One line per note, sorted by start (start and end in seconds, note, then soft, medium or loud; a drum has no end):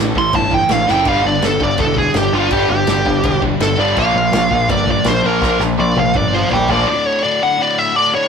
0.00 0.12 A1 medium
0.00 0.13 A2 medium
0.00 0.14 A2 medium
0.00 0.14 E3 medium
0.00 0.14 E3 loud
0.00 0.15 A3 medium
0.00 0.15 C#4 medium
0.00 0.14 E4 loud
0.00 0.13 A4 loud
0.14 0.30 A1 medium
0.14 0.32 A2 medium
0.14 0.88 A2 medium
0.14 0.32 E3 medium
0.14 0.88 E3 medium
0.14 0.88 A3 medium
0.14 0.87 C#4 medium
0.14 0.87 E4 medium
0.14 0.86 A4 medium
0.14 kick medium
0.18 0.35 C6 loud
0.33 0.63 G1 medium
0.33 0.50 A2 medium
0.33 0.50 E3 medium
0.33 0.52 A5 medium
0.33 kick loud
0.33 crash medium
0.51 0.68 A2 medium
0.51 0.68 E3 medium
0.51 0.71 G5 medium
0.51 kick medium
0.69 0.84 A1 medium
0.69 0.85 A2 medium
0.69 0.86 E3 medium
0.69 0.89 F5 loud
0.69 snare loud
0.69 crash medium
0.87 1.06 F#1 medium
0.87 1.03 A2 medium
0.87 1.04 E3 medium
0.87 1.05 A3 loud
0.87 snare medium
0.91 1.07 G5 medium
1.04 1.21 G1 medium
1.04 1.22 G2 medium
1.04 1.77 G2 medium
1.04 1.22 D3 medium
1.04 1.77 D3 loud
1.04 1.23 G3 loud
1.04 1.79 G3 loud
1.04 1.80 B3 loud
1.04 kick loud
1.04 crash medium
1.08 1.80 D4 loud
1.08 1.81 G4 loud
1.08 1.25 F5 loud
1.23 1.39 G1 medium
1.23 1.40 G2 medium
1.23 1.40 D3 medium
1.23 1.43 D5 medium
1.42 1.57 G1 medium
1.42 1.58 G2 medium
1.42 1.59 D3 medium
1.42 1.62 A4 loud
1.42 snare loud
1.42 crash medium
1.59 1.75 G1 medium
1.59 1.76 G2 medium
1.59 1.77 D3 medium
1.59 1.80 D5 medium
1.59 kick medium
1.78 2.08 E1 medium
1.78 2.49 G2 medium
1.78 1.95 G2 medium
1.78 2.50 D3 medium
1.78 1.95 D3 medium
1.78 2.51 G3 medium
1.78 2.51 B3 medium
1.78 2.53 D4 medium
1.78 2.52 G4 medium
1.78 1.97 A4 medium
1.78 kick loud
1.78 crash medium
1.96 2.13 G2 medium
1.96 2.13 D3 medium
1.96 2.15 G#4 loud
1.96 kick medium
2.14 2.29 G1 loud
2.14 2.31 G2 medium
2.14 2.31 D3 medium
2.14 2.34 G4 medium
2.14 snare loud
2.14 crash medium
2.32 2.47 G1 medium
2.32 2.50 G2 medium
2.32 2.50 D3 loud
2.32 2.50 G3 loud
2.32 2.51 F4 loud
2.50 2.66 G1 medium
2.50 3.22 G2 medium
2.50 2.68 G2 medium
2.50 2.68 D3 medium
2.50 3.23 D3 loud
2.50 2.68 G3 loud
2.50 3.23 G3 loud
2.50 3.23 B3 loud
2.50 3.26 D4 loud
2.50 2.69 G4 loud
2.50 3.24 G4 loud
2.50 kick loud
2.50 crash medium
2.68 2.84 G1 loud
2.68 2.86 G2 medium
2.68 2.86 D3 medium
2.68 3.40 G4 loud
2.87 3.02 G1 loud
2.87 3.04 G2 medium
2.87 3.04 D3 medium
2.87 snare loud
2.87 crash medium
3.05 3.20 G1 medium
3.05 3.22 G2 medium
3.05 3.23 D3 medium
3.05 kick medium
3.23 3.53 E1 medium
3.23 3.95 G2 medium
3.23 3.41 G2 medium
3.23 3.96 D3 medium
3.23 3.41 D3 medium
3.23 3.96 G3 medium
3.23 3.97 B3 medium
3.23 3.99 D4 medium
3.23 3.97 G4 medium
3.23 kick loud
3.23 crash medium
3.42 3.59 G2 medium
3.42 3.59 D3 medium
3.42 kick medium
3.60 3.75 G1 medium
3.60 3.76 G2 medium
3.60 3.77 D3 medium
3.60 3.79 A4 loud
3.60 snare loud
3.60 crash medium
3.77 3.93 G1 medium
3.77 3.95 G2 medium
3.77 3.96 D3 medium
3.77 3.96 G3 loud
3.77 3.97 D5 loud
3.95 4.12 A#1 loud
3.95 4.12 A#2 loud
3.95 4.69 A#2 medium
3.95 4.12 F3 loud
3.95 4.69 F3 medium
3.95 4.14 A#3 loud
3.95 4.70 A#3 loud
3.95 4.71 D4 loud
3.95 4.68 F5 loud
3.95 kick loud
3.95 crash medium
3.99 4.71 F4 loud
3.99 4.72 A#4 loud
4.14 4.29 A#1 medium
4.14 4.31 A#2 medium
4.14 4.31 F3 medium
4.32 4.47 A#1 loud
4.32 4.49 A#2 medium
4.32 4.49 F3 medium
4.32 snare loud
4.32 crash medium
4.51 4.66 A#1 medium
4.51 4.67 A#2 medium
4.51 4.68 F3 medium
4.51 kick medium
4.68 4.99 G1 medium
4.68 4.85 A#2 medium
4.68 5.40 A#2 medium
4.68 4.86 F3 medium
4.68 5.41 F3 medium
4.68 5.41 A#3 medium
4.68 5.43 D4 medium
4.68 5.42 F4 medium
4.68 5.42 A#4 medium
4.68 4.88 D5 medium
4.68 kick loud
4.68 crash medium
4.87 5.04 A#2 medium
4.87 5.04 F3 medium
4.87 kick medium
4.91 5.07 D5 loud
5.04 5.20 A#1 loud
5.04 5.21 A#2 medium
5.04 5.22 F3 medium
5.04 5.26 C5 loud
5.04 snare loud
5.04 crash medium
5.22 5.39 A#1 loud
5.22 5.40 A#2 loud
5.22 5.40 F3 loud
5.22 5.41 A#3 loud
5.22 5.60 A#4 loud
5.41 5.56 A#1 medium
5.41 6.13 A#2 medium
5.41 5.59 A#2 medium
5.41 5.59 F3 loud
5.41 6.13 F3 loud
5.41 6.14 A#3 loud
5.41 5.59 A#3 loud
5.41 6.14 D4 loud
5.41 6.14 F4 loud
5.41 6.15 A#4 loud
5.41 kick loud
5.41 snare medium
5.60 5.75 A#1 medium
5.60 5.77 A#2 medium
5.60 5.77 F3 medium
5.60 snare medium
5.78 5.93 A#1 loud
5.78 5.95 A#2 medium
5.78 5.95 F3 medium
5.78 5.97 D5 loud
5.96 6.11 A#1 medium
5.96 6.13 A#2 medium
5.96 6.13 F3 medium
5.96 high tom medium
6.00 6.16 F5 medium
6.14 6.44 G1 medium
6.14 6.86 A#2 medium
6.14 6.31 A#2 medium
6.14 6.86 F3 medium
6.14 6.31 F3 medium
6.14 6.87 A#3 medium
6.14 6.87 D4 medium
6.14 6.87 F4 medium
6.14 6.88 A#4 medium
6.14 6.33 D5 loud
6.14 kick loud
6.14 mid tom medium
6.33 6.49 A#2 medium
6.33 6.49 F3 medium
6.33 6.52 C5 medium
6.33 6.50 F5 loud
6.50 6.66 A#1 loud
6.50 6.67 A#2 medium
6.50 6.67 F3 medium
6.50 6.69 D5 loud
6.50 6.70 G5 loud
6.50 floor tom medium
6.68 6.84 A#1 medium
6.68 6.85 A#2 medium
6.68 6.86 F3 loud
6.68 6.86 A#3 loud
6.68 6.72 D5 medium
6.68 floor tom medium
6.73 6.87 D5 loud
6.87 7.23 D2 medium
6.87 7.22 A2 loud
6.87 7.24 D3 loud
6.87 7.06 D5 loud
7.06 7.23 C#5 loud
7.23 7.41 D2 medium
7.23 7.41 A2 medium
7.23 7.42 D3 medium
7.23 7.42 D5 loud
7.42 7.57 D2 medium
7.42 7.58 A2 medium
7.42 7.58 D3 medium
7.42 7.61 F#5 loud
7.58 7.94 D2 loud
7.58 7.94 A2 loud
7.58 7.95 D3 loud
7.58 7.78 D5 loud
7.78 7.96 E5 loud
7.95 8.14 D2 medium
7.95 8.14 A2 loud
7.95 8.15 D3 loud
7.95 8.14 D5 loud
8.15 8.28 D2 loud
8.15 8.28 A2 medium
8.15 8.28 D3 loud
8.15 8.28 C#5 loud